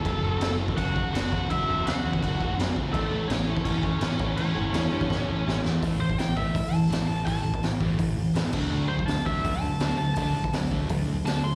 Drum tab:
CC |x---x---x---x---|x---x---x---x---|x---x---x---x---|x---x-----------|
HH |----------------|----------------|----------------|----------------|
SD |----o-------o---|----o-------o---|----o-------o---|----o---o---o-o-|
BD |o------oo-o---o-|o------oo-o---o-|o------oo-o---o-|-------oo-------|

CC |----------------|--------------x-|----------------|----------------|
HH |o---o---o---o---|o---o---o---o---|----o---o---o---|o---o---o---o---|
SD |----o-------o---|----o-------o---|----o-------o---|----o-------o---|
BD |o--o--o-o-------|o--o--o-o-----o-|---o--o-o-------|o--o--o-o-------|